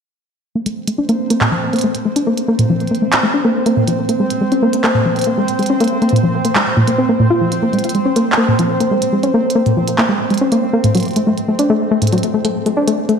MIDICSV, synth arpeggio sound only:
0, 0, Header, 1, 2, 480
1, 0, Start_track
1, 0, Tempo, 428571
1, 620, Time_signature, 4, 2, 24, 8
1, 14778, End_track
2, 0, Start_track
2, 0, Title_t, "Synth arpeggio sound"
2, 0, Program_c, 0, 84
2, 621, Note_on_c, 0, 58, 75
2, 675, Note_off_c, 0, 58, 0
2, 741, Note_on_c, 0, 57, 72
2, 795, Note_off_c, 0, 57, 0
2, 980, Note_on_c, 0, 57, 74
2, 1070, Note_off_c, 0, 57, 0
2, 1100, Note_on_c, 0, 62, 78
2, 1154, Note_off_c, 0, 62, 0
2, 1220, Note_on_c, 0, 58, 102
2, 1310, Note_off_c, 0, 58, 0
2, 1461, Note_on_c, 0, 58, 97
2, 1550, Note_off_c, 0, 58, 0
2, 1580, Note_on_c, 0, 46, 83
2, 1634, Note_off_c, 0, 46, 0
2, 1700, Note_on_c, 0, 53, 73
2, 1815, Note_off_c, 0, 53, 0
2, 1940, Note_on_c, 0, 58, 77
2, 1994, Note_off_c, 0, 58, 0
2, 2059, Note_on_c, 0, 57, 79
2, 2114, Note_off_c, 0, 57, 0
2, 2300, Note_on_c, 0, 57, 76
2, 2390, Note_off_c, 0, 57, 0
2, 2420, Note_on_c, 0, 62, 76
2, 2474, Note_off_c, 0, 62, 0
2, 2540, Note_on_c, 0, 58, 98
2, 2630, Note_off_c, 0, 58, 0
2, 2780, Note_on_c, 0, 58, 103
2, 2870, Note_off_c, 0, 58, 0
2, 2900, Note_on_c, 0, 46, 76
2, 2954, Note_off_c, 0, 46, 0
2, 3020, Note_on_c, 0, 53, 77
2, 3135, Note_off_c, 0, 53, 0
2, 3260, Note_on_c, 0, 58, 71
2, 3314, Note_off_c, 0, 58, 0
2, 3381, Note_on_c, 0, 57, 74
2, 3435, Note_off_c, 0, 57, 0
2, 3621, Note_on_c, 0, 57, 76
2, 3710, Note_off_c, 0, 57, 0
2, 3740, Note_on_c, 0, 62, 76
2, 3794, Note_off_c, 0, 62, 0
2, 3860, Note_on_c, 0, 58, 101
2, 3950, Note_off_c, 0, 58, 0
2, 4101, Note_on_c, 0, 58, 101
2, 4191, Note_off_c, 0, 58, 0
2, 4221, Note_on_c, 0, 46, 73
2, 4275, Note_off_c, 0, 46, 0
2, 4342, Note_on_c, 0, 53, 75
2, 4455, Note_off_c, 0, 53, 0
2, 4581, Note_on_c, 0, 58, 73
2, 4635, Note_off_c, 0, 58, 0
2, 4701, Note_on_c, 0, 56, 78
2, 4755, Note_off_c, 0, 56, 0
2, 4940, Note_on_c, 0, 56, 76
2, 5030, Note_off_c, 0, 56, 0
2, 5060, Note_on_c, 0, 61, 76
2, 5114, Note_off_c, 0, 61, 0
2, 5180, Note_on_c, 0, 58, 96
2, 5270, Note_off_c, 0, 58, 0
2, 5420, Note_on_c, 0, 58, 102
2, 5510, Note_off_c, 0, 58, 0
2, 5540, Note_on_c, 0, 46, 75
2, 5594, Note_off_c, 0, 46, 0
2, 5660, Note_on_c, 0, 53, 71
2, 5775, Note_off_c, 0, 53, 0
2, 5901, Note_on_c, 0, 58, 78
2, 5955, Note_off_c, 0, 58, 0
2, 6021, Note_on_c, 0, 56, 75
2, 6075, Note_off_c, 0, 56, 0
2, 6261, Note_on_c, 0, 56, 75
2, 6350, Note_off_c, 0, 56, 0
2, 6381, Note_on_c, 0, 61, 81
2, 6435, Note_off_c, 0, 61, 0
2, 6501, Note_on_c, 0, 58, 102
2, 6591, Note_off_c, 0, 58, 0
2, 6741, Note_on_c, 0, 58, 93
2, 6830, Note_off_c, 0, 58, 0
2, 6861, Note_on_c, 0, 46, 82
2, 6915, Note_off_c, 0, 46, 0
2, 6981, Note_on_c, 0, 53, 78
2, 7095, Note_off_c, 0, 53, 0
2, 7221, Note_on_c, 0, 58, 70
2, 7275, Note_off_c, 0, 58, 0
2, 7341, Note_on_c, 0, 56, 79
2, 7395, Note_off_c, 0, 56, 0
2, 7581, Note_on_c, 0, 46, 98
2, 7635, Note_off_c, 0, 46, 0
2, 7701, Note_on_c, 0, 58, 77
2, 7791, Note_off_c, 0, 58, 0
2, 7821, Note_on_c, 0, 60, 97
2, 7911, Note_off_c, 0, 60, 0
2, 7941, Note_on_c, 0, 58, 98
2, 8031, Note_off_c, 0, 58, 0
2, 8061, Note_on_c, 0, 46, 102
2, 8151, Note_off_c, 0, 46, 0
2, 8180, Note_on_c, 0, 65, 103
2, 8235, Note_off_c, 0, 65, 0
2, 8300, Note_on_c, 0, 53, 79
2, 8415, Note_off_c, 0, 53, 0
2, 8540, Note_on_c, 0, 58, 77
2, 8594, Note_off_c, 0, 58, 0
2, 8660, Note_on_c, 0, 56, 70
2, 8715, Note_off_c, 0, 56, 0
2, 8901, Note_on_c, 0, 56, 75
2, 8991, Note_off_c, 0, 56, 0
2, 9021, Note_on_c, 0, 61, 73
2, 9075, Note_off_c, 0, 61, 0
2, 9141, Note_on_c, 0, 58, 96
2, 9231, Note_off_c, 0, 58, 0
2, 9381, Note_on_c, 0, 58, 98
2, 9471, Note_off_c, 0, 58, 0
2, 9502, Note_on_c, 0, 46, 71
2, 9555, Note_off_c, 0, 46, 0
2, 9622, Note_on_c, 0, 53, 73
2, 9735, Note_off_c, 0, 53, 0
2, 9861, Note_on_c, 0, 58, 78
2, 9915, Note_off_c, 0, 58, 0
2, 9981, Note_on_c, 0, 56, 76
2, 10035, Note_off_c, 0, 56, 0
2, 10221, Note_on_c, 0, 56, 79
2, 10311, Note_off_c, 0, 56, 0
2, 10342, Note_on_c, 0, 61, 79
2, 10395, Note_off_c, 0, 61, 0
2, 10461, Note_on_c, 0, 58, 101
2, 10551, Note_off_c, 0, 58, 0
2, 10701, Note_on_c, 0, 58, 93
2, 10791, Note_off_c, 0, 58, 0
2, 10821, Note_on_c, 0, 46, 80
2, 10875, Note_off_c, 0, 46, 0
2, 10941, Note_on_c, 0, 53, 72
2, 11055, Note_off_c, 0, 53, 0
2, 11181, Note_on_c, 0, 58, 87
2, 11235, Note_off_c, 0, 58, 0
2, 11301, Note_on_c, 0, 56, 74
2, 11355, Note_off_c, 0, 56, 0
2, 11541, Note_on_c, 0, 56, 77
2, 11631, Note_off_c, 0, 56, 0
2, 11661, Note_on_c, 0, 61, 81
2, 11715, Note_off_c, 0, 61, 0
2, 11781, Note_on_c, 0, 58, 98
2, 11871, Note_off_c, 0, 58, 0
2, 12021, Note_on_c, 0, 58, 97
2, 12111, Note_off_c, 0, 58, 0
2, 12141, Note_on_c, 0, 45, 79
2, 12195, Note_off_c, 0, 45, 0
2, 12262, Note_on_c, 0, 54, 75
2, 12375, Note_off_c, 0, 54, 0
2, 12502, Note_on_c, 0, 57, 77
2, 12555, Note_off_c, 0, 57, 0
2, 12621, Note_on_c, 0, 57, 80
2, 12675, Note_off_c, 0, 57, 0
2, 12862, Note_on_c, 0, 57, 73
2, 12951, Note_off_c, 0, 57, 0
2, 12981, Note_on_c, 0, 62, 75
2, 13035, Note_off_c, 0, 62, 0
2, 13101, Note_on_c, 0, 57, 104
2, 13191, Note_off_c, 0, 57, 0
2, 13341, Note_on_c, 0, 57, 101
2, 13431, Note_off_c, 0, 57, 0
2, 13461, Note_on_c, 0, 45, 76
2, 13515, Note_off_c, 0, 45, 0
2, 13581, Note_on_c, 0, 54, 76
2, 13695, Note_off_c, 0, 54, 0
2, 13821, Note_on_c, 0, 57, 79
2, 13875, Note_off_c, 0, 57, 0
2, 13940, Note_on_c, 0, 57, 72
2, 13994, Note_off_c, 0, 57, 0
2, 14180, Note_on_c, 0, 57, 78
2, 14270, Note_off_c, 0, 57, 0
2, 14300, Note_on_c, 0, 62, 75
2, 14354, Note_off_c, 0, 62, 0
2, 14419, Note_on_c, 0, 57, 96
2, 14510, Note_off_c, 0, 57, 0
2, 14660, Note_on_c, 0, 57, 102
2, 14750, Note_off_c, 0, 57, 0
2, 14778, End_track
0, 0, End_of_file